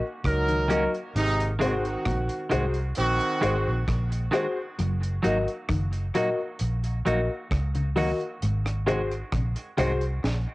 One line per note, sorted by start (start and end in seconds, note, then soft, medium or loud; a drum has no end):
0.24 0.85 C#2 loud
0.24 0.90 F#3 loud
0.24 0.90 D#4 loud
0.24 0.90 A#4 loud
0.24 kick loud
0.24 cross-stick loud
0.24 closed hi-hat medium
0.48 0.65 D#3 medium
0.48 closed hi-hat medium
0.68 0.83 D#3 medium
0.68 0.88 F#3 medium
0.68 0.83 A#3 medium
0.68 0.83 C#4 medium
0.68 0.92 F#4 medium
0.68 0.84 F#4 medium
0.68 0.93 A#4 medium
0.68 0.93 D#5 loud
0.68 closed hi-hat medium
0.94 closed hi-hat soft
1.15 1.95 G#1 loud
1.15 1.34 G#2 medium
1.15 1.52 C3 loud
1.15 1.52 G#3 loud
1.15 1.51 D#4 loud
1.15 closed hi-hat medium
1.40 closed hi-hat medium
1.59 1.79 C3 medium
1.59 1.73 D#3 medium
1.59 2.48 D#3 medium
1.59 1.74 G#3 medium
1.59 1.74 C4 medium
1.59 2.48 C4 medium
1.59 1.83 F#4 medium
1.59 1.74 F#4 medium
1.59 2.48 F#4 medium
1.59 1.83 G#4 medium
1.59 1.84 C5 loud
1.59 closed hi-hat medium
1.85 closed hi-hat soft
2.05 2.27 A#1 medium
2.05 2.24 A#2 medium
2.05 kick loud
2.05 cross-stick loud
2.05 closed hi-hat loud
2.29 closed hi-hat medium
2.50 2.92 C2 loud
2.50 2.70 G#2 medium
2.50 2.64 D#3 medium
2.50 2.65 G#3 medium
2.50 2.65 C4 medium
2.50 2.74 F#4 medium
2.50 2.65 F#4 loud
2.50 2.74 G#4 medium
2.50 2.74 C5 loud
2.50 closed hi-hat medium
2.74 closed hi-hat soft
2.95 3.18 A#1 loud
2.95 3.84 D#3 loud
2.95 3.84 C4 loud
2.95 3.84 F#4 loud
2.95 closed hi-hat medium
3.20 closed hi-hat medium
3.41 3.64 G#1 medium
3.41 3.55 D#3 medium
3.41 3.55 G#3 loud
3.41 3.56 C4 loud
3.41 3.65 F#4 medium
3.41 3.56 F#4 loud
3.41 3.65 G#4 medium
3.41 3.65 C5 loud
3.41 closed hi-hat medium
3.68 3.86 A#1 medium
3.88 4.28 A#1 loud
3.88 kick loud
3.88 cross-stick loud
3.88 closed hi-hat medium
4.12 closed hi-hat medium
4.31 4.46 D#3 loud
4.31 4.46 G#3 medium
4.31 4.46 C4 medium
4.31 4.55 F#4 medium
4.31 4.47 F#4 loud
4.31 4.56 G#4 medium
4.31 4.56 C5 loud
4.31 cross-stick medium
4.31 closed hi-hat medium
4.79 5.19 F#1 loud
4.79 4.96 F#3 medium
4.79 closed hi-hat medium
5.03 closed hi-hat medium
5.23 5.45 G#1 medium
5.23 5.37 F#3 medium
5.23 5.42 F#3 medium
5.23 5.37 A#3 medium
5.23 5.37 D#4 loud
5.23 5.47 F#4 loud
5.23 5.38 F#4 loud
5.23 5.47 A#4 medium
5.23 5.47 D#5 loud
5.23 closed hi-hat medium
5.48 closed hi-hat soft
5.69 6.09 F#1 loud
5.69 5.87 D#3 medium
5.69 kick loud
5.69 cross-stick loud
5.69 closed hi-hat loud
5.93 closed hi-hat medium
6.15 6.33 A#2 medium
6.15 6.28 F#3 medium
6.15 6.29 A#3 medium
6.15 6.29 D#4 medium
6.15 6.37 F#4 medium
6.15 6.29 F#4 loud
6.15 6.38 A#4 medium
6.15 6.38 D#5 loud
6.15 closed hi-hat medium
6.59 7.00 A#1 loud
6.59 closed hi-hat medium
6.84 closed hi-hat medium
7.05 7.27 A#1 loud
7.05 7.19 F#3 medium
7.05 7.19 A#3 loud
7.05 7.20 D#4 medium
7.05 7.28 F#4 medium
7.05 7.20 F#4 medium
7.05 7.28 A#4 medium
7.05 7.29 D#5 medium
7.05 closed hi-hat medium
7.51 8.12 C#2 medium
7.51 kick loud
7.51 cross-stick loud
7.51 closed hi-hat medium
7.75 7.91 C#3 medium
7.75 closed hi-hat medium
7.96 8.15 D#3 medium
7.96 8.10 F#3 loud
7.96 8.10 A#3 medium
7.96 8.10 D#4 loud
7.96 8.18 F#4 medium
7.96 8.11 F#4 loud
7.96 8.19 A#4 medium
7.96 8.19 D#5 loud
7.96 open hi-hat medium
8.21 closed hi-hat soft
8.42 9.22 G#1 loud
8.42 8.60 G#2 medium
8.42 closed hi-hat medium
8.66 cross-stick medium
8.66 closed hi-hat medium
8.86 9.06 C3 medium
8.86 9.00 D#3 medium
8.86 9.01 G#3 medium
8.86 9.01 C4 medium
8.86 9.09 F#4 loud
8.86 9.01 F#4 medium
8.86 9.10 G#4 medium
8.86 9.10 C5 loud
8.86 closed hi-hat medium
9.11 closed hi-hat soft
9.32 9.54 A#1 medium
9.32 9.51 C3 medium
9.32 kick loud
9.32 cross-stick loud
9.32 closed hi-hat medium
9.56 closed hi-hat medium
9.77 10.18 C2 loud
9.77 9.96 G#2 medium
9.77 9.91 D#3 medium
9.77 9.92 G#3 medium
9.77 9.92 C4 loud
9.77 10.00 F#4 medium
9.77 9.92 F#4 medium
9.77 10.00 G#4 medium
9.77 10.01 C5 loud
9.77 closed hi-hat medium
10.01 closed hi-hat soft
10.24 10.45 A#1 loud
10.24 snare medium